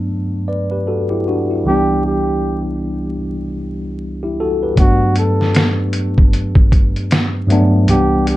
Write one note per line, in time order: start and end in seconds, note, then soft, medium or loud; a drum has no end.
0.00 1.68 G2 medium
0.00 1.68 F#3 medium
0.00 1.68 A3 medium
0.00 1.68 B3 medium
0.00 1.29 D4 medium
0.48 0.70 B4 soft
0.48 0.70 D5 medium
0.71 0.87 G4 soft
0.71 0.87 B4 medium
0.87 1.10 F#4 medium
0.87 1.09 A4 medium
1.10 1.26 E4 medium
1.10 1.26 G4 medium
1.28 1.50 D4 medium
1.28 1.49 F#4 medium
1.50 1.87 E4 soft
1.50 1.87 G4 soft
1.64 3.14 C2 medium
1.64 3.15 E3 medium
1.64 3.15 G3 medium
1.64 2.02 G4 loud
1.68 3.16 B3 medium
1.68 3.17 D4 medium
2.06 2.64 G4 medium
4.23 4.39 E4 medium
4.23 4.38 G4 medium
4.40 4.62 F#4 medium
4.40 4.61 A4 medium
4.63 5.00 G4 soft
4.63 4.99 B4 medium
4.76 6.26 G2 medium
4.76 6.26 F#3 medium
4.76 6.27 A3 medium
4.76 5.14 F#4 loud
4.76 kick loud
4.76 closed hi-hat medium
4.80 6.28 B3 medium
4.80 6.28 D4 medium
5.16 5.76 A4 medium
5.16 closed hi-hat medium
5.41 snare soft
5.55 finger snap medium
5.55 snare loud
5.55 closed hi-hat medium
5.93 closed hi-hat medium
6.18 kick medium
6.33 closed hi-hat medium
6.55 kick medium
6.72 kick medium
6.72 closed hi-hat soft
6.96 closed hi-hat soft
7.11 finger snap medium
7.11 snare loud
7.11 closed hi-hat medium
7.47 7.86 G2 medium
7.47 7.86 F#3 medium
7.47 7.87 A3 medium
7.47 closed hi-hat medium
7.51 7.88 B3 medium
7.51 7.89 D4 medium
7.87 8.37 C2 medium
7.87 8.37 E3 medium
7.87 8.37 G3 medium
7.87 8.25 G4 loud
7.87 closed hi-hat medium
7.91 8.37 B3 medium
7.91 8.37 D4 medium
8.27 8.37 G4 medium
8.27 closed hi-hat medium